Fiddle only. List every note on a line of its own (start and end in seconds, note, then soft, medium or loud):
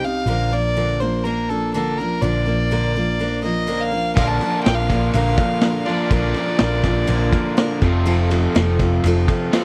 0.05 0.54 F5 medium
0.53 1.01 D5 medium
1.00 1.25 C5 medium
1.24 1.51 A#4 medium
1.49 1.73 A4 medium
1.74 2.00 A4 medium
1.98 2.23 A#4 medium
2.21 3.43 D5 medium
3.44 3.82 D#5 medium
3.80 4.15 F5 medium
4.15 4.29 F5 loud
4.27 4.63 A5 medium
4.63 4.76 G5 medium
4.75 5.13 F5 medium
5.13 5.87 F5 medium
5.86 7.82 D5 medium